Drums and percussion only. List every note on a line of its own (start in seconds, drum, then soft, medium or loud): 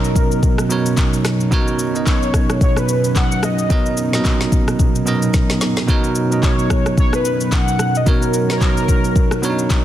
0.04 shaker medium
0.16 kick loud
0.16 shaker medium
0.32 shaker soft
0.43 kick loud
0.43 shaker medium
0.58 cross-stick medium
0.58 shaker medium
0.70 shaker medium
0.86 shaker medium
0.97 kick medium
0.97 clap medium
0.97 shaker medium
1.13 shaker medium
1.25 cross-stick loud
1.25 snare medium
1.25 shaker medium
1.40 shaker medium
1.52 kick loud
1.52 shaker medium
1.68 shaker medium
1.79 shaker medium
1.95 shaker soft
2.07 kick medium
2.07 clap medium
2.07 shaker medium
2.23 shaker soft
2.34 kick loud
2.34 cross-stick medium
2.34 shaker medium
2.50 cross-stick medium
2.50 shaker soft
2.61 kick loud
2.61 shaker medium
2.77 cross-stick medium
2.77 shaker medium
2.89 shaker medium
3.04 shaker medium
3.16 kick medium
3.16 clap medium
3.16 shaker medium
3.32 shaker medium
3.43 cross-stick loud
3.43 shaker medium
3.59 shaker soft
3.70 kick loud
3.70 shaker medium
3.86 shaker medium
3.97 shaker medium
4.13 snare medium
4.13 shaker medium
4.25 kick medium
4.25 clap medium
4.25 shaker medium
4.41 snare medium
4.41 shaker medium
4.52 kick medium
4.52 shaker medium
4.68 cross-stick medium
4.68 shaker soft
4.79 kick loud
4.79 shaker medium
4.95 shaker medium
5.07 shaker medium
5.22 shaker medium
5.34 kick medium
5.34 snare medium
5.34 shaker medium
5.50 snare medium
5.50 shaker medium
5.61 snare medium
5.61 shaker medium
5.77 snare medium
5.77 shaker medium
5.88 kick loud
5.88 shaker medium
6.04 shaker medium
6.15 shaker medium
6.32 shaker soft
6.43 kick medium
6.43 clap medium
6.43 shaker medium
6.59 shaker soft
6.70 kick medium
6.70 cross-stick loud
6.70 shaker medium
6.86 cross-stick medium
6.86 shaker soft
6.98 kick loud
6.98 shaker medium
7.13 cross-stick medium
7.13 shaker medium
7.25 shaker loud
7.40 shaker medium
7.52 kick medium
7.52 clap medium
7.52 shaker medium
7.68 shaker medium
7.79 cross-stick medium
7.79 shaker medium
7.95 shaker medium
8.07 kick loud
8.07 shaker medium
8.22 shaker medium
8.34 shaker medium
8.50 snare medium
8.50 shaker soft
8.61 kick medium
8.61 clap medium
8.61 shaker medium
8.77 shaker soft
8.88 kick medium
8.88 shaker medium
9.04 shaker soft
9.16 kick loud
9.16 shaker medium
9.31 cross-stick medium
9.31 shaker medium
9.43 shaker loud
9.59 shaker medium
9.70 kick medium
9.70 clap medium
9.70 shaker medium